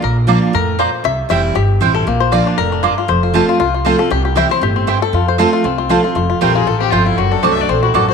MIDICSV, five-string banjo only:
0, 0, Header, 1, 2, 480
1, 0, Start_track
1, 0, Key_signature, -1, "major"
1, 0, Tempo, 255319
1, 62, Time_signature, 4, 2, 24, 8
1, 15301, End_track
2, 0, Start_track
2, 0, Title_t, "Five-string banjo"
2, 0, Program_c, 0, 105
2, 72, Note_on_c, 0, 70, 83
2, 305, Note_off_c, 0, 70, 0
2, 1027, Note_on_c, 0, 70, 104
2, 1492, Note_on_c, 0, 72, 93
2, 1516, Note_off_c, 0, 70, 0
2, 1940, Note_off_c, 0, 72, 0
2, 1974, Note_on_c, 0, 76, 107
2, 2421, Note_off_c, 0, 76, 0
2, 2444, Note_on_c, 0, 76, 101
2, 2895, Note_off_c, 0, 76, 0
2, 2925, Note_on_c, 0, 67, 90
2, 3613, Note_off_c, 0, 67, 0
2, 3658, Note_on_c, 0, 69, 90
2, 3871, Note_off_c, 0, 69, 0
2, 3902, Note_on_c, 0, 58, 68
2, 4144, Note_on_c, 0, 72, 88
2, 4354, Note_off_c, 0, 72, 0
2, 4368, Note_on_c, 0, 74, 96
2, 4582, Note_off_c, 0, 58, 0
2, 4643, Note_on_c, 0, 62, 65
2, 4816, Note_off_c, 0, 74, 0
2, 4846, Note_on_c, 0, 70, 92
2, 5094, Note_off_c, 0, 62, 0
2, 5117, Note_on_c, 0, 62, 62
2, 5295, Note_off_c, 0, 70, 0
2, 5317, Note_on_c, 0, 65, 75
2, 5578, Note_off_c, 0, 65, 0
2, 5600, Note_on_c, 0, 65, 66
2, 5771, Note_off_c, 0, 62, 0
2, 5806, Note_on_c, 0, 72, 88
2, 5818, Note_off_c, 0, 65, 0
2, 6075, Note_on_c, 0, 65, 62
2, 6255, Note_off_c, 0, 72, 0
2, 6278, Note_off_c, 0, 65, 0
2, 6300, Note_on_c, 0, 65, 61
2, 6537, Note_off_c, 0, 65, 0
2, 6560, Note_on_c, 0, 65, 63
2, 6741, Note_off_c, 0, 65, 0
2, 6764, Note_on_c, 0, 65, 88
2, 7016, Note_off_c, 0, 65, 0
2, 7038, Note_on_c, 0, 65, 63
2, 7238, Note_off_c, 0, 65, 0
2, 7261, Note_on_c, 0, 65, 64
2, 7503, Note_on_c, 0, 69, 97
2, 7714, Note_off_c, 0, 69, 0
2, 7727, Note_off_c, 0, 65, 0
2, 7735, Note_on_c, 0, 67, 101
2, 7967, Note_off_c, 0, 67, 0
2, 7990, Note_on_c, 0, 67, 65
2, 8217, Note_on_c, 0, 76, 110
2, 8453, Note_off_c, 0, 76, 0
2, 8484, Note_on_c, 0, 72, 108
2, 8648, Note_off_c, 0, 67, 0
2, 8702, Note_on_c, 0, 67, 93
2, 8706, Note_off_c, 0, 72, 0
2, 8949, Note_on_c, 0, 60, 66
2, 9157, Note_off_c, 0, 67, 0
2, 9179, Note_on_c, 0, 67, 65
2, 9435, Note_off_c, 0, 67, 0
2, 9443, Note_on_c, 0, 69, 104
2, 9671, Note_on_c, 0, 65, 65
2, 9926, Note_off_c, 0, 69, 0
2, 9934, Note_on_c, 0, 72, 75
2, 10124, Note_off_c, 0, 65, 0
2, 10131, Note_off_c, 0, 72, 0
2, 10147, Note_on_c, 0, 65, 62
2, 10374, Note_off_c, 0, 65, 0
2, 10396, Note_on_c, 0, 65, 64
2, 10614, Note_off_c, 0, 60, 0
2, 10621, Note_on_c, 0, 60, 69
2, 10850, Note_off_c, 0, 65, 0
2, 10872, Note_on_c, 0, 65, 67
2, 11077, Note_off_c, 0, 65, 0
2, 11100, Note_on_c, 0, 65, 70
2, 11304, Note_off_c, 0, 60, 0
2, 11336, Note_off_c, 0, 65, 0
2, 11358, Note_on_c, 0, 65, 62
2, 11559, Note_off_c, 0, 65, 0
2, 11581, Note_on_c, 0, 65, 61
2, 11814, Note_off_c, 0, 65, 0
2, 11837, Note_on_c, 0, 65, 59
2, 12044, Note_off_c, 0, 65, 0
2, 12066, Note_on_c, 0, 65, 62
2, 12298, Note_off_c, 0, 65, 0
2, 12321, Note_on_c, 0, 65, 61
2, 12518, Note_off_c, 0, 65, 0
2, 12541, Note_on_c, 0, 65, 61
2, 12793, Note_on_c, 0, 60, 61
2, 12994, Note_off_c, 0, 65, 0
2, 13017, Note_on_c, 0, 65, 61
2, 13253, Note_off_c, 0, 65, 0
2, 13276, Note_on_c, 0, 65, 60
2, 13454, Note_off_c, 0, 60, 0
2, 13496, Note_on_c, 0, 54, 60
2, 13500, Note_off_c, 0, 65, 0
2, 13754, Note_on_c, 0, 62, 57
2, 13974, Note_on_c, 0, 66, 58
2, 14184, Note_off_c, 0, 54, 0
2, 14212, Note_off_c, 0, 62, 0
2, 14235, Note_on_c, 0, 62, 60
2, 14460, Note_on_c, 0, 60, 68
2, 14663, Note_off_c, 0, 66, 0
2, 14714, Note_on_c, 0, 66, 63
2, 14896, Note_off_c, 0, 62, 0
2, 14923, Note_off_c, 0, 66, 0
2, 14946, Note_on_c, 0, 66, 66
2, 15146, Note_off_c, 0, 60, 0
2, 15176, Note_off_c, 0, 66, 0
2, 15199, Note_on_c, 0, 66, 62
2, 15301, Note_off_c, 0, 66, 0
2, 15301, End_track
0, 0, End_of_file